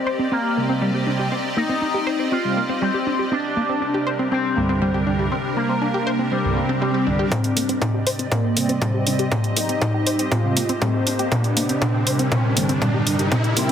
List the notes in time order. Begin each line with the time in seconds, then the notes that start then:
Already playing: C4 G4 D5 D#5
0.07 C5
0.19 C4
0.32 A#3 C4
0.57 C3 G3 A#3 C4
0.69 C4
0.82 G3
0.94 G4
1.07 C3 G3 C4 D4
1.19 G4
1.32 C4
1.57 A#3 D#4
1.69 C4
1.82 D#4
1.94 G4
2.07 C5
2.19 C4
2.32 C4 F4
2.44 C3 G3 C4
2.57 A#3
2.69 C4
2.82 G3 C4
2.94 G4
3.07 D4
3.19 G4
3.32 C3 G3 C4 D4 A#4
3.57 A#3
3.69 C4
3.82 D4
3.94 G4
4.07 C5
4.19 C4
4.32 C4
4.57 C2 G2 D3 G3 A#3
4.69 C4
4.82 G3
4.94 G4
5.07 C2 G2 D3 G3 D4
5.19 G4
5.32 C4
5.57 A#3
5.69 C4
5.82 D4
5.94 G4
6.07 C5
6.19 C4
6.32 G3 C4, swell
6.44 C2 G2 D3 G3
6.57 A#3
6.69 C4
6.82 G3
6.94 G4
7.07 C2 G2 D3 G3 D4
7.19 G4
7.32 C4 G4 D5 D#5, kick, closed hi-hat, mid tom, riser
7.44 closed hi-hat
7.57 A#3, open hi-hat
7.69 C4, closed hi-hat
7.82 D#4, kick, closed hi-hat, mid tom
7.94 G4
8.07 C5, open hi-hat
8.19 C4, closed hi-hat
8.32 A#3 C4, kick, closed hi-hat, mid tom
8.57 C3 G3 A#3 C4, open hi-hat
8.69 C4, closed hi-hat
8.82 G3, kick, closed hi-hat, mid tom
8.94 G4
9.07 C3 G3 C4 D4, open hi-hat
9.19 G4, closed hi-hat
9.32 C4 C5, kick, closed hi-hat, mid tom
9.44 closed hi-hat
9.57 A#3 D#4, open hi-hat
9.69 C4, closed hi-hat
9.82 D#4, kick, closed hi-hat, mid tom
9.94 G4
10.07 C5, open hi-hat
10.19 C4, closed hi-hat
10.32 C4 F4, kick, closed hi-hat, mid tom
10.44 C3 G3 C4
10.57 A#3, open hi-hat
10.69 C4, closed hi-hat
10.82 G3 C4, kick, closed hi-hat, mid tom
10.94 G4
11.07 D4, open hi-hat
11.19 G4, closed hi-hat
11.32 C3 G3 C4 D4 A#4, kick, closed hi-hat, mid tom
11.44 closed hi-hat
11.57 A#3, open hi-hat
11.69 C4, closed hi-hat
11.82 D4, kick, closed hi-hat, mid tom
11.94 G4
12.07 C5, open hi-hat
12.19 C4, closed hi-hat
12.32 C4, kick, closed hi-hat, mid tom
12.57 G2 D3 G3 A#3, open hi-hat
12.69 C4, closed hi-hat
12.82 G3, kick, closed hi-hat, mid tom
12.94 G4
13.07 G2 D3 G3 D4, open hi-hat
13.19 G4, closed hi-hat
13.32 C4, kick, closed hi-hat, mid tom
13.44 closed hi-hat
13.57 A#3 C4, open hi-hat